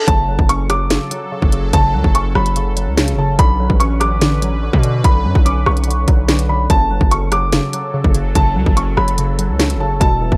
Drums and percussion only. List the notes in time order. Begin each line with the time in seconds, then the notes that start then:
0.08 kick, closed hi-hat
0.39 kick
0.49 closed hi-hat
0.70 cross-stick, closed hi-hat
0.90 snare, closed hi-hat
1.11 closed hi-hat
1.42 kick
1.52 closed hi-hat
1.73 kick, closed hi-hat
2.04 kick
2.15 closed hi-hat
2.35 cross-stick
2.46 closed hi-hat
2.56 closed hi-hat
2.77 closed hi-hat
2.97 snare, closed hi-hat
3.08 closed hi-hat
3.39 kick, closed hi-hat
3.70 kick
3.80 closed hi-hat
4.01 cross-stick, closed hi-hat
4.21 snare, closed hi-hat
4.42 closed hi-hat
4.73 kick
4.83 closed hi-hat
5.04 kick, closed hi-hat
5.35 kick
5.46 closed hi-hat
5.66 cross-stick
5.77 closed hi-hat
5.84 closed hi-hat
5.91 closed hi-hat
6.08 kick, closed hi-hat
6.29 snare, closed hi-hat
6.39 closed hi-hat
6.70 kick, closed hi-hat
7.01 kick
7.11 closed hi-hat
7.32 cross-stick, closed hi-hat
7.52 snare, closed hi-hat
7.73 closed hi-hat
8.04 kick
8.14 closed hi-hat
8.35 kick, closed hi-hat
8.66 kick
8.77 closed hi-hat
8.97 cross-stick
9.08 closed hi-hat
9.18 closed hi-hat
9.39 closed hi-hat
9.60 snare, closed hi-hat
9.70 closed hi-hat
10.01 kick, closed hi-hat
10.32 kick